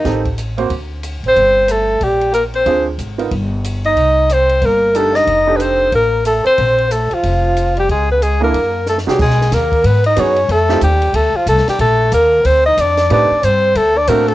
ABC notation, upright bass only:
X:1
M:4/4
L:1/8
Q:"Swing" 1/4=184
K:Bb
V:1 name="Upright bass" clef=bass
A,,,4 D,,3 A,,, | G,,,4 B,,,4 | D,,2 _A,,,2 G,,,4 | C,,4 G,,,4 |
F,,,4 A,,,3 z | B,,,3 z F,,,4 | _D,,4 _G,,3 C,, | =B,,,2 ^D,,2 ^G,,2 ^F,,2 |
F,,2 E,,2 D,, z C,, z | B,,,2 E,,2 D,,2 F,,2 | A,, z G,,2 D,,2 A,,2 |]